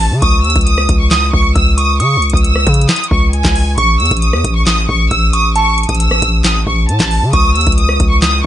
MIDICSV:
0, 0, Header, 1, 5, 480
1, 0, Start_track
1, 0, Key_signature, 4, "minor"
1, 0, Tempo, 444444
1, 240, Time_signature, 4, 2, 24, 8
1, 9139, End_track
2, 0, Start_track
2, 0, Title_t, "Violin section"
2, 0, Program_c, 0, 48
2, 0, Note_on_c, 0, 81, 89
2, 212, Note_off_c, 0, 81, 0
2, 239, Note_on_c, 0, 87, 101
2, 455, Note_off_c, 0, 87, 0
2, 480, Note_on_c, 0, 88, 94
2, 696, Note_off_c, 0, 88, 0
2, 719, Note_on_c, 0, 87, 86
2, 1058, Note_off_c, 0, 87, 0
2, 1081, Note_on_c, 0, 85, 78
2, 1188, Note_off_c, 0, 85, 0
2, 1199, Note_on_c, 0, 87, 89
2, 1415, Note_off_c, 0, 87, 0
2, 1438, Note_on_c, 0, 85, 87
2, 1655, Note_off_c, 0, 85, 0
2, 1680, Note_on_c, 0, 88, 81
2, 1896, Note_off_c, 0, 88, 0
2, 1920, Note_on_c, 0, 87, 88
2, 2136, Note_off_c, 0, 87, 0
2, 2159, Note_on_c, 0, 85, 99
2, 2498, Note_off_c, 0, 85, 0
2, 2521, Note_on_c, 0, 87, 76
2, 2628, Note_off_c, 0, 87, 0
2, 2640, Note_on_c, 0, 88, 87
2, 3091, Note_off_c, 0, 88, 0
2, 3121, Note_on_c, 0, 87, 83
2, 3337, Note_off_c, 0, 87, 0
2, 3361, Note_on_c, 0, 85, 73
2, 3577, Note_off_c, 0, 85, 0
2, 3602, Note_on_c, 0, 80, 93
2, 4052, Note_off_c, 0, 80, 0
2, 4082, Note_on_c, 0, 85, 101
2, 4297, Note_off_c, 0, 85, 0
2, 4322, Note_on_c, 0, 88, 97
2, 4537, Note_off_c, 0, 88, 0
2, 4562, Note_on_c, 0, 87, 81
2, 4899, Note_off_c, 0, 87, 0
2, 4921, Note_on_c, 0, 85, 84
2, 5029, Note_off_c, 0, 85, 0
2, 5042, Note_on_c, 0, 87, 83
2, 5257, Note_off_c, 0, 87, 0
2, 5282, Note_on_c, 0, 85, 86
2, 5497, Note_off_c, 0, 85, 0
2, 5520, Note_on_c, 0, 88, 86
2, 5736, Note_off_c, 0, 88, 0
2, 5760, Note_on_c, 0, 87, 89
2, 5976, Note_off_c, 0, 87, 0
2, 6001, Note_on_c, 0, 85, 107
2, 6339, Note_off_c, 0, 85, 0
2, 6361, Note_on_c, 0, 87, 75
2, 6469, Note_off_c, 0, 87, 0
2, 6481, Note_on_c, 0, 88, 94
2, 6932, Note_off_c, 0, 88, 0
2, 6961, Note_on_c, 0, 87, 85
2, 7177, Note_off_c, 0, 87, 0
2, 7201, Note_on_c, 0, 85, 73
2, 7416, Note_off_c, 0, 85, 0
2, 7441, Note_on_c, 0, 81, 89
2, 7892, Note_off_c, 0, 81, 0
2, 7919, Note_on_c, 0, 87, 102
2, 8135, Note_off_c, 0, 87, 0
2, 8161, Note_on_c, 0, 88, 92
2, 8376, Note_off_c, 0, 88, 0
2, 8399, Note_on_c, 0, 87, 84
2, 8738, Note_off_c, 0, 87, 0
2, 8760, Note_on_c, 0, 85, 79
2, 8868, Note_off_c, 0, 85, 0
2, 8881, Note_on_c, 0, 87, 91
2, 9097, Note_off_c, 0, 87, 0
2, 9139, End_track
3, 0, Start_track
3, 0, Title_t, "Synth bell"
3, 0, Program_c, 1, 98
3, 238, Note_on_c, 1, 85, 99
3, 1156, Note_off_c, 1, 85, 0
3, 1200, Note_on_c, 1, 87, 87
3, 1651, Note_off_c, 1, 87, 0
3, 1679, Note_on_c, 1, 88, 81
3, 1907, Note_off_c, 1, 88, 0
3, 1918, Note_on_c, 1, 85, 86
3, 2147, Note_off_c, 1, 85, 0
3, 2159, Note_on_c, 1, 87, 93
3, 3556, Note_off_c, 1, 87, 0
3, 4082, Note_on_c, 1, 85, 109
3, 4998, Note_off_c, 1, 85, 0
3, 5042, Note_on_c, 1, 87, 92
3, 5492, Note_off_c, 1, 87, 0
3, 5521, Note_on_c, 1, 88, 80
3, 5749, Note_off_c, 1, 88, 0
3, 5761, Note_on_c, 1, 85, 85
3, 5989, Note_off_c, 1, 85, 0
3, 6001, Note_on_c, 1, 81, 105
3, 7878, Note_off_c, 1, 81, 0
3, 7921, Note_on_c, 1, 85, 102
3, 8837, Note_off_c, 1, 85, 0
3, 8880, Note_on_c, 1, 87, 86
3, 9139, Note_off_c, 1, 87, 0
3, 9139, End_track
4, 0, Start_track
4, 0, Title_t, "808-style bass"
4, 0, Program_c, 2, 38
4, 0, Note_on_c, 2, 33, 109
4, 120, Note_on_c, 2, 49, 100
4, 137, Note_off_c, 2, 33, 0
4, 234, Note_off_c, 2, 49, 0
4, 241, Note_on_c, 2, 37, 108
4, 481, Note_on_c, 2, 39, 96
4, 497, Note_off_c, 2, 37, 0
4, 595, Note_off_c, 2, 39, 0
4, 601, Note_on_c, 2, 37, 101
4, 946, Note_off_c, 2, 37, 0
4, 960, Note_on_c, 2, 37, 105
4, 1421, Note_off_c, 2, 37, 0
4, 1441, Note_on_c, 2, 37, 106
4, 1671, Note_off_c, 2, 37, 0
4, 1680, Note_on_c, 2, 37, 111
4, 2160, Note_on_c, 2, 49, 102
4, 2176, Note_off_c, 2, 37, 0
4, 2339, Note_on_c, 2, 37, 100
4, 2356, Note_off_c, 2, 49, 0
4, 2511, Note_off_c, 2, 37, 0
4, 2520, Note_on_c, 2, 37, 104
4, 2866, Note_off_c, 2, 37, 0
4, 2880, Note_on_c, 2, 49, 104
4, 3111, Note_off_c, 2, 49, 0
4, 3360, Note_on_c, 2, 37, 106
4, 3706, Note_off_c, 2, 37, 0
4, 3719, Note_on_c, 2, 37, 106
4, 4065, Note_off_c, 2, 37, 0
4, 4080, Note_on_c, 2, 33, 103
4, 4320, Note_on_c, 2, 40, 101
4, 4336, Note_off_c, 2, 33, 0
4, 4434, Note_off_c, 2, 40, 0
4, 4441, Note_on_c, 2, 33, 106
4, 4679, Note_on_c, 2, 40, 100
4, 4696, Note_off_c, 2, 33, 0
4, 4794, Note_off_c, 2, 40, 0
4, 4800, Note_on_c, 2, 33, 104
4, 5261, Note_off_c, 2, 33, 0
4, 5280, Note_on_c, 2, 33, 105
4, 5511, Note_off_c, 2, 33, 0
4, 5520, Note_on_c, 2, 33, 110
4, 6326, Note_off_c, 2, 33, 0
4, 6361, Note_on_c, 2, 33, 104
4, 6706, Note_off_c, 2, 33, 0
4, 6720, Note_on_c, 2, 33, 109
4, 7181, Note_off_c, 2, 33, 0
4, 7200, Note_on_c, 2, 33, 109
4, 7441, Note_on_c, 2, 45, 98
4, 7457, Note_off_c, 2, 33, 0
4, 7554, Note_off_c, 2, 45, 0
4, 7559, Note_on_c, 2, 33, 110
4, 7800, Note_on_c, 2, 49, 103
4, 7816, Note_off_c, 2, 33, 0
4, 7914, Note_off_c, 2, 49, 0
4, 7920, Note_on_c, 2, 37, 104
4, 8160, Note_on_c, 2, 39, 100
4, 8176, Note_off_c, 2, 37, 0
4, 8274, Note_off_c, 2, 39, 0
4, 8280, Note_on_c, 2, 37, 103
4, 8626, Note_off_c, 2, 37, 0
4, 8640, Note_on_c, 2, 37, 100
4, 9101, Note_off_c, 2, 37, 0
4, 9139, End_track
5, 0, Start_track
5, 0, Title_t, "Drums"
5, 0, Note_on_c, 9, 46, 86
5, 108, Note_off_c, 9, 46, 0
5, 240, Note_on_c, 9, 36, 121
5, 240, Note_on_c, 9, 42, 76
5, 348, Note_off_c, 9, 36, 0
5, 348, Note_off_c, 9, 42, 0
5, 480, Note_on_c, 9, 42, 39
5, 540, Note_off_c, 9, 42, 0
5, 540, Note_on_c, 9, 42, 49
5, 600, Note_off_c, 9, 42, 0
5, 600, Note_on_c, 9, 42, 57
5, 601, Note_on_c, 9, 36, 103
5, 660, Note_off_c, 9, 42, 0
5, 660, Note_on_c, 9, 42, 68
5, 709, Note_off_c, 9, 36, 0
5, 720, Note_off_c, 9, 42, 0
5, 720, Note_on_c, 9, 42, 88
5, 828, Note_off_c, 9, 42, 0
5, 840, Note_on_c, 9, 37, 91
5, 948, Note_off_c, 9, 37, 0
5, 960, Note_on_c, 9, 36, 98
5, 960, Note_on_c, 9, 42, 88
5, 1068, Note_off_c, 9, 36, 0
5, 1068, Note_off_c, 9, 42, 0
5, 1200, Note_on_c, 9, 38, 109
5, 1200, Note_on_c, 9, 42, 82
5, 1203, Note_on_c, 9, 39, 89
5, 1308, Note_off_c, 9, 38, 0
5, 1308, Note_off_c, 9, 42, 0
5, 1311, Note_off_c, 9, 39, 0
5, 1441, Note_on_c, 9, 36, 98
5, 1549, Note_off_c, 9, 36, 0
5, 1680, Note_on_c, 9, 36, 101
5, 1681, Note_on_c, 9, 42, 66
5, 1788, Note_off_c, 9, 36, 0
5, 1789, Note_off_c, 9, 42, 0
5, 1920, Note_on_c, 9, 42, 86
5, 2028, Note_off_c, 9, 42, 0
5, 2160, Note_on_c, 9, 42, 75
5, 2268, Note_off_c, 9, 42, 0
5, 2399, Note_on_c, 9, 42, 40
5, 2480, Note_off_c, 9, 42, 0
5, 2480, Note_on_c, 9, 42, 54
5, 2521, Note_on_c, 9, 36, 103
5, 2560, Note_off_c, 9, 42, 0
5, 2560, Note_on_c, 9, 42, 70
5, 2629, Note_off_c, 9, 36, 0
5, 2640, Note_off_c, 9, 42, 0
5, 2640, Note_on_c, 9, 42, 90
5, 2748, Note_off_c, 9, 42, 0
5, 2760, Note_on_c, 9, 37, 90
5, 2868, Note_off_c, 9, 37, 0
5, 2880, Note_on_c, 9, 36, 100
5, 2880, Note_on_c, 9, 42, 78
5, 2960, Note_off_c, 9, 42, 0
5, 2960, Note_on_c, 9, 42, 74
5, 2988, Note_off_c, 9, 36, 0
5, 3040, Note_off_c, 9, 42, 0
5, 3040, Note_on_c, 9, 42, 77
5, 3120, Note_off_c, 9, 42, 0
5, 3120, Note_on_c, 9, 38, 112
5, 3120, Note_on_c, 9, 42, 74
5, 3123, Note_on_c, 9, 39, 92
5, 3200, Note_off_c, 9, 42, 0
5, 3200, Note_on_c, 9, 42, 74
5, 3228, Note_off_c, 9, 38, 0
5, 3231, Note_off_c, 9, 39, 0
5, 3279, Note_off_c, 9, 42, 0
5, 3279, Note_on_c, 9, 42, 77
5, 3360, Note_on_c, 9, 36, 97
5, 3387, Note_off_c, 9, 42, 0
5, 3468, Note_off_c, 9, 36, 0
5, 3600, Note_on_c, 9, 42, 65
5, 3708, Note_off_c, 9, 42, 0
5, 3719, Note_on_c, 9, 36, 108
5, 3721, Note_on_c, 9, 38, 101
5, 3724, Note_on_c, 9, 39, 85
5, 3827, Note_off_c, 9, 36, 0
5, 3829, Note_off_c, 9, 38, 0
5, 3832, Note_off_c, 9, 39, 0
5, 3840, Note_on_c, 9, 46, 88
5, 3948, Note_off_c, 9, 46, 0
5, 4079, Note_on_c, 9, 42, 77
5, 4080, Note_on_c, 9, 36, 126
5, 4187, Note_off_c, 9, 42, 0
5, 4188, Note_off_c, 9, 36, 0
5, 4320, Note_on_c, 9, 42, 39
5, 4380, Note_off_c, 9, 42, 0
5, 4380, Note_on_c, 9, 42, 49
5, 4440, Note_off_c, 9, 42, 0
5, 4440, Note_on_c, 9, 42, 58
5, 4441, Note_on_c, 9, 36, 101
5, 4500, Note_off_c, 9, 42, 0
5, 4500, Note_on_c, 9, 42, 67
5, 4549, Note_off_c, 9, 36, 0
5, 4560, Note_off_c, 9, 42, 0
5, 4560, Note_on_c, 9, 42, 86
5, 4668, Note_off_c, 9, 42, 0
5, 4680, Note_on_c, 9, 37, 91
5, 4788, Note_off_c, 9, 37, 0
5, 4800, Note_on_c, 9, 36, 98
5, 4800, Note_on_c, 9, 42, 89
5, 4908, Note_off_c, 9, 36, 0
5, 4908, Note_off_c, 9, 42, 0
5, 5039, Note_on_c, 9, 42, 79
5, 5040, Note_on_c, 9, 38, 116
5, 5042, Note_on_c, 9, 39, 91
5, 5147, Note_off_c, 9, 42, 0
5, 5148, Note_off_c, 9, 38, 0
5, 5150, Note_off_c, 9, 39, 0
5, 5280, Note_on_c, 9, 36, 98
5, 5388, Note_off_c, 9, 36, 0
5, 5520, Note_on_c, 9, 36, 99
5, 5520, Note_on_c, 9, 42, 68
5, 5628, Note_off_c, 9, 36, 0
5, 5628, Note_off_c, 9, 42, 0
5, 5760, Note_on_c, 9, 42, 87
5, 5868, Note_off_c, 9, 42, 0
5, 6000, Note_on_c, 9, 42, 76
5, 6108, Note_off_c, 9, 42, 0
5, 6240, Note_on_c, 9, 42, 39
5, 6300, Note_off_c, 9, 42, 0
5, 6300, Note_on_c, 9, 42, 49
5, 6361, Note_off_c, 9, 42, 0
5, 6361, Note_on_c, 9, 36, 105
5, 6361, Note_on_c, 9, 42, 61
5, 6421, Note_off_c, 9, 42, 0
5, 6421, Note_on_c, 9, 42, 70
5, 6469, Note_off_c, 9, 36, 0
5, 6481, Note_off_c, 9, 42, 0
5, 6481, Note_on_c, 9, 42, 90
5, 6589, Note_off_c, 9, 42, 0
5, 6601, Note_on_c, 9, 37, 93
5, 6709, Note_off_c, 9, 37, 0
5, 6720, Note_on_c, 9, 36, 99
5, 6720, Note_on_c, 9, 42, 88
5, 6828, Note_off_c, 9, 36, 0
5, 6828, Note_off_c, 9, 42, 0
5, 6960, Note_on_c, 9, 38, 114
5, 6960, Note_on_c, 9, 42, 82
5, 6963, Note_on_c, 9, 39, 92
5, 7068, Note_off_c, 9, 38, 0
5, 7068, Note_off_c, 9, 42, 0
5, 7071, Note_off_c, 9, 39, 0
5, 7201, Note_on_c, 9, 36, 98
5, 7309, Note_off_c, 9, 36, 0
5, 7440, Note_on_c, 9, 42, 69
5, 7548, Note_off_c, 9, 42, 0
5, 7559, Note_on_c, 9, 36, 105
5, 7560, Note_on_c, 9, 38, 104
5, 7560, Note_on_c, 9, 42, 42
5, 7563, Note_on_c, 9, 39, 83
5, 7667, Note_off_c, 9, 36, 0
5, 7668, Note_off_c, 9, 38, 0
5, 7668, Note_off_c, 9, 42, 0
5, 7671, Note_off_c, 9, 39, 0
5, 7680, Note_on_c, 9, 46, 85
5, 7788, Note_off_c, 9, 46, 0
5, 7919, Note_on_c, 9, 42, 74
5, 7920, Note_on_c, 9, 36, 122
5, 8027, Note_off_c, 9, 42, 0
5, 8028, Note_off_c, 9, 36, 0
5, 8160, Note_on_c, 9, 42, 41
5, 8220, Note_off_c, 9, 42, 0
5, 8220, Note_on_c, 9, 42, 49
5, 8279, Note_off_c, 9, 42, 0
5, 8279, Note_on_c, 9, 42, 57
5, 8280, Note_on_c, 9, 36, 105
5, 8340, Note_off_c, 9, 42, 0
5, 8340, Note_on_c, 9, 42, 68
5, 8388, Note_off_c, 9, 36, 0
5, 8400, Note_off_c, 9, 42, 0
5, 8400, Note_on_c, 9, 42, 90
5, 8508, Note_off_c, 9, 42, 0
5, 8520, Note_on_c, 9, 37, 92
5, 8628, Note_off_c, 9, 37, 0
5, 8639, Note_on_c, 9, 42, 89
5, 8640, Note_on_c, 9, 36, 101
5, 8747, Note_off_c, 9, 42, 0
5, 8748, Note_off_c, 9, 36, 0
5, 8880, Note_on_c, 9, 38, 115
5, 8880, Note_on_c, 9, 42, 82
5, 8883, Note_on_c, 9, 39, 90
5, 8988, Note_off_c, 9, 38, 0
5, 8988, Note_off_c, 9, 42, 0
5, 8991, Note_off_c, 9, 39, 0
5, 9139, End_track
0, 0, End_of_file